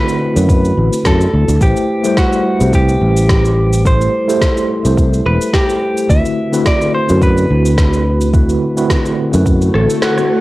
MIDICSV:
0, 0, Header, 1, 6, 480
1, 0, Start_track
1, 0, Tempo, 560748
1, 1381, Time_signature, 4, 2, 24, 8
1, 8908, End_track
2, 0, Start_track
2, 0, Title_t, "Clean electric guitar"
2, 0, Program_c, 0, 27
2, 0, Note_on_c, 0, 71, 94
2, 910, Note_off_c, 0, 71, 0
2, 913, Note_on_c, 0, 69, 89
2, 1387, Note_off_c, 0, 69, 0
2, 1391, Note_on_c, 0, 67, 88
2, 1865, Note_off_c, 0, 67, 0
2, 1869, Note_on_c, 0, 66, 86
2, 2350, Note_off_c, 0, 66, 0
2, 2353, Note_on_c, 0, 67, 91
2, 3273, Note_off_c, 0, 67, 0
2, 3311, Note_on_c, 0, 72, 95
2, 4472, Note_off_c, 0, 72, 0
2, 4505, Note_on_c, 0, 71, 98
2, 4741, Note_on_c, 0, 67, 96
2, 4750, Note_off_c, 0, 71, 0
2, 5221, Note_on_c, 0, 76, 103
2, 5235, Note_off_c, 0, 67, 0
2, 5667, Note_off_c, 0, 76, 0
2, 5710, Note_on_c, 0, 74, 93
2, 5929, Note_off_c, 0, 74, 0
2, 5944, Note_on_c, 0, 72, 94
2, 6185, Note_off_c, 0, 72, 0
2, 6188, Note_on_c, 0, 71, 96
2, 8310, Note_off_c, 0, 71, 0
2, 8349, Note_on_c, 0, 69, 91
2, 8583, Note_off_c, 0, 69, 0
2, 8586, Note_on_c, 0, 66, 87
2, 8908, Note_off_c, 0, 66, 0
2, 8908, End_track
3, 0, Start_track
3, 0, Title_t, "Tine electric piano"
3, 0, Program_c, 1, 4
3, 0, Control_c, 1, 64, 127
3, 0, Note_on_c, 1, 50, 93
3, 0, Note_on_c, 1, 57, 86
3, 0, Note_on_c, 1, 60, 87
3, 0, Note_on_c, 1, 64, 84
3, 0, Note_on_c, 1, 66, 79
3, 0, Note_on_c, 1, 71, 103
3, 276, Note_off_c, 1, 50, 0
3, 277, Note_off_c, 1, 57, 0
3, 278, Note_off_c, 1, 60, 0
3, 280, Note_off_c, 1, 64, 0
3, 282, Note_off_c, 1, 66, 0
3, 285, Note_off_c, 1, 71, 0
3, 292, Note_on_c, 1, 50, 71
3, 300, Note_on_c, 1, 57, 64
3, 306, Note_on_c, 1, 60, 62
3, 315, Note_on_c, 1, 64, 66
3, 322, Note_on_c, 1, 66, 62
3, 329, Note_on_c, 1, 71, 74
3, 1345, Note_off_c, 1, 50, 0
3, 1349, Note_off_c, 1, 57, 0
3, 1352, Note_off_c, 1, 60, 0
3, 1356, Note_off_c, 1, 64, 0
3, 1359, Note_off_c, 1, 66, 0
3, 1363, Note_off_c, 1, 71, 0
3, 1372, Note_on_c, 1, 57, 83
3, 1378, Note_on_c, 1, 64, 77
3, 1380, Note_on_c, 1, 67, 78
3, 1385, Note_on_c, 1, 71, 74
3, 1390, Note_on_c, 1, 72, 86
3, 1392, Control_c, 1, 64, 0
3, 1561, Control_c, 1, 64, 127
3, 1716, Note_off_c, 1, 57, 0
3, 1719, Note_off_c, 1, 64, 0
3, 1720, Note_off_c, 1, 67, 0
3, 1723, Note_off_c, 1, 71, 0
3, 1725, Note_off_c, 1, 72, 0
3, 1740, Note_on_c, 1, 57, 94
3, 1748, Note_on_c, 1, 64, 83
3, 1753, Note_on_c, 1, 55, 85
3, 1756, Note_on_c, 1, 71, 83
3, 1758, Note_on_c, 1, 72, 94
3, 2194, Note_off_c, 1, 57, 0
3, 2198, Note_off_c, 1, 64, 0
3, 2201, Note_off_c, 1, 55, 0
3, 2202, Note_off_c, 1, 71, 0
3, 2204, Note_off_c, 1, 72, 0
3, 2213, Note_on_c, 1, 57, 71
3, 2222, Note_on_c, 1, 64, 66
3, 2232, Note_on_c, 1, 67, 65
3, 2240, Note_on_c, 1, 71, 64
3, 2248, Note_on_c, 1, 72, 79
3, 3265, Note_off_c, 1, 57, 0
3, 3269, Note_off_c, 1, 64, 0
3, 3275, Note_off_c, 1, 67, 0
3, 3278, Note_off_c, 1, 71, 0
3, 3283, Note_off_c, 1, 72, 0
3, 3290, Note_on_c, 1, 57, 77
3, 3296, Note_on_c, 1, 64, 77
3, 3301, Note_on_c, 1, 67, 77
3, 3306, Note_on_c, 1, 69, 77
3, 3308, Note_on_c, 1, 72, 92
3, 3635, Note_off_c, 1, 57, 0
3, 3638, Note_off_c, 1, 64, 0
3, 3640, Note_off_c, 1, 67, 0
3, 3643, Note_off_c, 1, 69, 0
3, 3644, Note_off_c, 1, 72, 0
3, 3661, Note_on_c, 1, 57, 98
3, 3666, Note_on_c, 1, 64, 88
3, 3671, Note_on_c, 1, 67, 81
3, 3676, Note_on_c, 1, 69, 83
3, 3679, Note_on_c, 1, 72, 103
3, 4115, Note_off_c, 1, 57, 0
3, 4118, Note_off_c, 1, 64, 0
3, 4120, Note_off_c, 1, 67, 0
3, 4122, Note_off_c, 1, 69, 0
3, 4124, Note_off_c, 1, 72, 0
3, 4132, Note_on_c, 1, 57, 72
3, 4141, Note_on_c, 1, 64, 64
3, 4150, Note_on_c, 1, 67, 62
3, 4159, Note_on_c, 1, 69, 63
3, 4168, Note_on_c, 1, 72, 79
3, 5185, Note_off_c, 1, 57, 0
3, 5189, Note_off_c, 1, 64, 0
3, 5193, Note_off_c, 1, 67, 0
3, 5198, Note_off_c, 1, 69, 0
3, 5202, Note_off_c, 1, 72, 0
3, 5212, Note_on_c, 1, 50, 84
3, 5214, Note_on_c, 1, 57, 78
3, 5219, Note_on_c, 1, 60, 82
3, 5223, Note_on_c, 1, 64, 78
3, 5227, Note_on_c, 1, 66, 71
3, 5230, Note_on_c, 1, 71, 93
3, 5233, Control_c, 1, 64, 0
3, 5401, Control_c, 1, 64, 127
3, 5556, Note_off_c, 1, 50, 0
3, 5557, Note_off_c, 1, 57, 0
3, 5559, Note_off_c, 1, 60, 0
3, 5562, Note_off_c, 1, 64, 0
3, 5563, Note_off_c, 1, 66, 0
3, 5565, Note_off_c, 1, 71, 0
3, 5579, Note_on_c, 1, 50, 95
3, 5583, Note_on_c, 1, 57, 87
3, 5587, Note_on_c, 1, 60, 85
3, 5590, Note_on_c, 1, 64, 80
3, 5595, Note_on_c, 1, 66, 87
3, 5597, Note_on_c, 1, 71, 105
3, 6034, Note_off_c, 1, 50, 0
3, 6036, Note_off_c, 1, 57, 0
3, 6038, Note_off_c, 1, 60, 0
3, 6039, Note_off_c, 1, 64, 0
3, 6042, Note_off_c, 1, 66, 0
3, 6043, Note_off_c, 1, 71, 0
3, 6050, Note_on_c, 1, 50, 74
3, 6056, Note_on_c, 1, 57, 64
3, 6062, Note_on_c, 1, 60, 68
3, 6070, Note_on_c, 1, 64, 69
3, 6078, Note_on_c, 1, 66, 68
3, 6084, Note_on_c, 1, 71, 81
3, 7103, Note_off_c, 1, 50, 0
3, 7106, Note_off_c, 1, 57, 0
3, 7110, Note_off_c, 1, 60, 0
3, 7114, Note_off_c, 1, 64, 0
3, 7118, Note_off_c, 1, 66, 0
3, 7121, Note_off_c, 1, 71, 0
3, 7128, Note_on_c, 1, 50, 83
3, 7131, Note_on_c, 1, 57, 77
3, 7136, Note_on_c, 1, 60, 76
3, 7140, Note_on_c, 1, 64, 79
3, 7143, Note_on_c, 1, 66, 78
3, 7145, Note_on_c, 1, 71, 99
3, 7474, Note_off_c, 1, 50, 0
3, 7476, Note_off_c, 1, 57, 0
3, 7478, Note_off_c, 1, 60, 0
3, 7480, Note_off_c, 1, 64, 0
3, 7482, Note_off_c, 1, 66, 0
3, 7482, Note_off_c, 1, 71, 0
3, 7499, Note_on_c, 1, 50, 92
3, 7503, Note_on_c, 1, 57, 84
3, 7506, Note_on_c, 1, 60, 86
3, 7510, Note_on_c, 1, 64, 84
3, 7511, Note_on_c, 1, 66, 90
3, 7517, Note_on_c, 1, 71, 102
3, 7954, Note_off_c, 1, 50, 0
3, 7956, Note_off_c, 1, 57, 0
3, 7957, Note_off_c, 1, 60, 0
3, 7959, Note_off_c, 1, 64, 0
3, 7960, Note_off_c, 1, 66, 0
3, 7963, Note_off_c, 1, 71, 0
3, 7969, Note_on_c, 1, 50, 72
3, 7976, Note_on_c, 1, 57, 64
3, 7983, Note_on_c, 1, 60, 69
3, 7992, Note_on_c, 1, 64, 65
3, 7998, Note_on_c, 1, 66, 66
3, 8005, Note_on_c, 1, 71, 84
3, 8908, Note_off_c, 1, 50, 0
3, 8908, Note_off_c, 1, 57, 0
3, 8908, Note_off_c, 1, 60, 0
3, 8908, Note_off_c, 1, 64, 0
3, 8908, Note_off_c, 1, 66, 0
3, 8908, Note_off_c, 1, 71, 0
3, 8908, End_track
4, 0, Start_track
4, 0, Title_t, "Fretless electric bass"
4, 0, Program_c, 2, 35
4, 311, Note_on_c, 2, 42, 85
4, 608, Note_off_c, 2, 42, 0
4, 661, Note_on_c, 2, 33, 76
4, 753, Note_off_c, 2, 33, 0
4, 898, Note_on_c, 2, 42, 80
4, 1074, Note_off_c, 2, 42, 0
4, 1143, Note_on_c, 2, 38, 75
4, 1233, Note_off_c, 2, 38, 0
4, 1270, Note_on_c, 2, 38, 93
4, 1347, Note_off_c, 2, 38, 0
4, 1379, Note_on_c, 2, 33, 86
4, 1471, Note_off_c, 2, 33, 0
4, 2232, Note_on_c, 2, 36, 89
4, 2529, Note_off_c, 2, 36, 0
4, 2579, Note_on_c, 2, 33, 77
4, 3487, Note_off_c, 2, 33, 0
4, 4152, Note_on_c, 2, 36, 81
4, 4448, Note_off_c, 2, 36, 0
4, 4502, Note_on_c, 2, 28, 81
4, 4593, Note_off_c, 2, 28, 0
4, 5218, Note_on_c, 2, 38, 88
4, 5311, Note_off_c, 2, 38, 0
4, 6077, Note_on_c, 2, 42, 83
4, 6371, Note_off_c, 2, 42, 0
4, 6423, Note_on_c, 2, 38, 79
4, 7330, Note_off_c, 2, 38, 0
4, 7994, Note_on_c, 2, 42, 87
4, 8289, Note_off_c, 2, 42, 0
4, 8342, Note_on_c, 2, 33, 80
4, 8433, Note_off_c, 2, 33, 0
4, 8908, End_track
5, 0, Start_track
5, 0, Title_t, "Swell"
5, 0, Program_c, 3, 103
5, 8100, Note_on_c, 3, 60, 58
5, 8908, Note_off_c, 3, 60, 0
5, 8908, End_track
6, 0, Start_track
6, 0, Title_t, "Drums"
6, 73, Note_on_c, 9, 69, 32
6, 159, Note_off_c, 9, 69, 0
6, 314, Note_on_c, 9, 69, 62
6, 399, Note_off_c, 9, 69, 0
6, 418, Note_on_c, 9, 36, 99
6, 423, Note_on_c, 9, 69, 55
6, 504, Note_off_c, 9, 36, 0
6, 509, Note_off_c, 9, 69, 0
6, 555, Note_on_c, 9, 69, 30
6, 641, Note_off_c, 9, 69, 0
6, 796, Note_on_c, 9, 69, 64
6, 881, Note_off_c, 9, 69, 0
6, 898, Note_on_c, 9, 36, 105
6, 899, Note_on_c, 9, 38, 92
6, 902, Note_on_c, 9, 69, 47
6, 984, Note_off_c, 9, 36, 0
6, 984, Note_off_c, 9, 38, 0
6, 988, Note_off_c, 9, 69, 0
6, 1035, Note_on_c, 9, 69, 31
6, 1120, Note_off_c, 9, 69, 0
6, 1273, Note_on_c, 9, 69, 60
6, 1359, Note_off_c, 9, 69, 0
6, 1379, Note_on_c, 9, 36, 100
6, 1381, Note_on_c, 9, 69, 56
6, 1464, Note_off_c, 9, 36, 0
6, 1467, Note_off_c, 9, 69, 0
6, 1512, Note_on_c, 9, 69, 32
6, 1597, Note_off_c, 9, 69, 0
6, 1751, Note_on_c, 9, 69, 62
6, 1836, Note_off_c, 9, 69, 0
6, 1858, Note_on_c, 9, 38, 89
6, 1859, Note_on_c, 9, 36, 99
6, 1861, Note_on_c, 9, 69, 53
6, 1943, Note_off_c, 9, 38, 0
6, 1944, Note_off_c, 9, 36, 0
6, 1947, Note_off_c, 9, 69, 0
6, 1992, Note_on_c, 9, 69, 31
6, 2078, Note_off_c, 9, 69, 0
6, 2232, Note_on_c, 9, 69, 59
6, 2317, Note_off_c, 9, 69, 0
6, 2339, Note_on_c, 9, 36, 86
6, 2340, Note_on_c, 9, 69, 53
6, 2425, Note_off_c, 9, 36, 0
6, 2426, Note_off_c, 9, 69, 0
6, 2471, Note_on_c, 9, 69, 29
6, 2557, Note_off_c, 9, 69, 0
6, 2712, Note_on_c, 9, 69, 64
6, 2798, Note_off_c, 9, 69, 0
6, 2819, Note_on_c, 9, 36, 101
6, 2819, Note_on_c, 9, 38, 89
6, 2822, Note_on_c, 9, 69, 50
6, 2904, Note_off_c, 9, 38, 0
6, 2905, Note_off_c, 9, 36, 0
6, 2908, Note_off_c, 9, 69, 0
6, 2954, Note_on_c, 9, 69, 30
6, 3040, Note_off_c, 9, 69, 0
6, 3194, Note_on_c, 9, 69, 61
6, 3279, Note_off_c, 9, 69, 0
6, 3299, Note_on_c, 9, 36, 95
6, 3303, Note_on_c, 9, 69, 49
6, 3385, Note_off_c, 9, 36, 0
6, 3388, Note_off_c, 9, 69, 0
6, 3435, Note_on_c, 9, 69, 29
6, 3521, Note_off_c, 9, 69, 0
6, 3677, Note_on_c, 9, 69, 62
6, 3762, Note_off_c, 9, 69, 0
6, 3779, Note_on_c, 9, 36, 100
6, 3781, Note_on_c, 9, 38, 94
6, 3784, Note_on_c, 9, 69, 51
6, 3864, Note_off_c, 9, 36, 0
6, 3866, Note_off_c, 9, 38, 0
6, 3870, Note_off_c, 9, 69, 0
6, 3915, Note_on_c, 9, 69, 30
6, 4001, Note_off_c, 9, 69, 0
6, 4155, Note_on_c, 9, 69, 57
6, 4240, Note_off_c, 9, 69, 0
6, 4258, Note_on_c, 9, 36, 92
6, 4264, Note_on_c, 9, 69, 50
6, 4344, Note_off_c, 9, 36, 0
6, 4350, Note_off_c, 9, 69, 0
6, 4396, Note_on_c, 9, 69, 28
6, 4482, Note_off_c, 9, 69, 0
6, 4636, Note_on_c, 9, 69, 60
6, 4721, Note_off_c, 9, 69, 0
6, 4737, Note_on_c, 9, 36, 98
6, 4740, Note_on_c, 9, 38, 81
6, 4743, Note_on_c, 9, 69, 46
6, 4823, Note_off_c, 9, 36, 0
6, 4825, Note_off_c, 9, 38, 0
6, 4829, Note_off_c, 9, 69, 0
6, 4875, Note_on_c, 9, 69, 30
6, 4961, Note_off_c, 9, 69, 0
6, 5115, Note_on_c, 9, 69, 59
6, 5201, Note_off_c, 9, 69, 0
6, 5217, Note_on_c, 9, 36, 91
6, 5223, Note_on_c, 9, 69, 50
6, 5302, Note_off_c, 9, 36, 0
6, 5308, Note_off_c, 9, 69, 0
6, 5354, Note_on_c, 9, 69, 31
6, 5440, Note_off_c, 9, 69, 0
6, 5593, Note_on_c, 9, 69, 59
6, 5679, Note_off_c, 9, 69, 0
6, 5697, Note_on_c, 9, 36, 94
6, 5698, Note_on_c, 9, 38, 97
6, 5702, Note_on_c, 9, 69, 50
6, 5783, Note_off_c, 9, 36, 0
6, 5784, Note_off_c, 9, 38, 0
6, 5787, Note_off_c, 9, 69, 0
6, 5833, Note_on_c, 9, 69, 30
6, 5919, Note_off_c, 9, 69, 0
6, 6071, Note_on_c, 9, 69, 56
6, 6157, Note_off_c, 9, 69, 0
6, 6177, Note_on_c, 9, 36, 90
6, 6180, Note_on_c, 9, 69, 47
6, 6263, Note_off_c, 9, 36, 0
6, 6266, Note_off_c, 9, 69, 0
6, 6313, Note_on_c, 9, 69, 29
6, 6398, Note_off_c, 9, 69, 0
6, 6554, Note_on_c, 9, 69, 57
6, 6639, Note_off_c, 9, 69, 0
6, 6657, Note_on_c, 9, 36, 98
6, 6658, Note_on_c, 9, 38, 87
6, 6662, Note_on_c, 9, 69, 49
6, 6743, Note_off_c, 9, 36, 0
6, 6744, Note_off_c, 9, 38, 0
6, 6747, Note_off_c, 9, 69, 0
6, 6791, Note_on_c, 9, 69, 30
6, 6877, Note_off_c, 9, 69, 0
6, 7030, Note_on_c, 9, 69, 58
6, 7115, Note_off_c, 9, 69, 0
6, 7137, Note_on_c, 9, 36, 95
6, 7139, Note_on_c, 9, 69, 52
6, 7222, Note_off_c, 9, 36, 0
6, 7224, Note_off_c, 9, 69, 0
6, 7271, Note_on_c, 9, 69, 30
6, 7356, Note_off_c, 9, 69, 0
6, 7512, Note_on_c, 9, 69, 59
6, 7597, Note_off_c, 9, 69, 0
6, 7617, Note_on_c, 9, 36, 95
6, 7619, Note_on_c, 9, 38, 100
6, 7622, Note_on_c, 9, 69, 56
6, 7703, Note_off_c, 9, 36, 0
6, 7704, Note_off_c, 9, 38, 0
6, 7708, Note_off_c, 9, 69, 0
6, 7752, Note_on_c, 9, 69, 30
6, 7838, Note_off_c, 9, 69, 0
6, 7991, Note_on_c, 9, 69, 57
6, 8077, Note_off_c, 9, 69, 0
6, 8097, Note_on_c, 9, 36, 83
6, 8100, Note_on_c, 9, 69, 51
6, 8182, Note_off_c, 9, 36, 0
6, 8186, Note_off_c, 9, 69, 0
6, 8231, Note_on_c, 9, 69, 28
6, 8317, Note_off_c, 9, 69, 0
6, 8338, Note_on_c, 9, 37, 55
6, 8423, Note_off_c, 9, 37, 0
6, 8474, Note_on_c, 9, 69, 57
6, 8559, Note_off_c, 9, 69, 0
6, 8577, Note_on_c, 9, 37, 74
6, 8577, Note_on_c, 9, 38, 95
6, 8581, Note_on_c, 9, 69, 48
6, 8663, Note_off_c, 9, 37, 0
6, 8663, Note_off_c, 9, 38, 0
6, 8667, Note_off_c, 9, 69, 0
6, 8710, Note_on_c, 9, 37, 65
6, 8713, Note_on_c, 9, 69, 29
6, 8796, Note_off_c, 9, 37, 0
6, 8799, Note_off_c, 9, 69, 0
6, 8908, End_track
0, 0, End_of_file